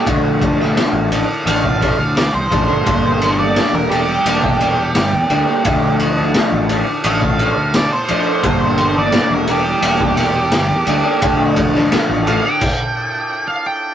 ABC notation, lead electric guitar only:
X:1
M:4/4
L:1/16
Q:1/4=86
K:Gdor
V:1 name="Lead electric guitar"
z8 f4 d c3- | c3 d2 B G8- G2- | G2 z6 f4 d c3- | c3 d2 B G8- G2- |
G2 z4 f g6 f g2 |]